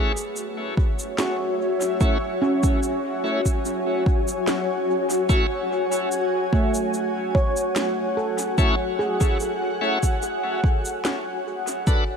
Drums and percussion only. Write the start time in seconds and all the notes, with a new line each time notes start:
0.17 cabasa
0.36 cabasa
0.77 kick
0.99 cabasa
1.18 snare, cabasa
1.81 cabasa
2.01 kick, cabasa
2.63 kick, cabasa
2.83 cabasa
3.46 kick, cabasa
3.65 cabasa
4.06 kick
4.28 cabasa
4.47 snare, cabasa
5.10 cabasa
5.30 kick, cabasa
5.92 cabasa
6.12 cabasa
6.53 kick
6.74 cabasa
6.94 cabasa
7.35 kick
7.57 cabasa
7.76 snare, cabasa
8.39 cabasa
8.58 kick, cabasa
9.21 kick, cabasa
9.40 cabasa
10.03 kick, cabasa
10.23 cabasa
10.64 kick
10.85 cabasa
11.05 snare, cabasa
11.68 cabasa
11.87 kick, cabasa